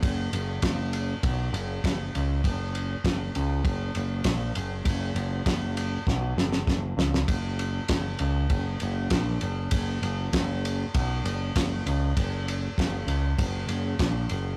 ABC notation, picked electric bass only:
X:1
M:4/4
L:1/8
Q:1/4=99
K:F#
V:1 name="Picked electric bass" clef=bass
F,,, F,,, F,,,2 B,,, F,,, F,,, C,, | F,,,2 F,,, C,, F,,, F,,, A,,, F,,, | F,,, F,,, F,,,2 B,,, F,,, F,,, C,, | F,,,2 F,,, C,, F,,, F,,, A,,, F,,, |
F,,, F,,, F,,,2 B,,, F,,, F,,, C,, | F,,,2 F,,, C,, F,,, F,,, A,,, F,,, |]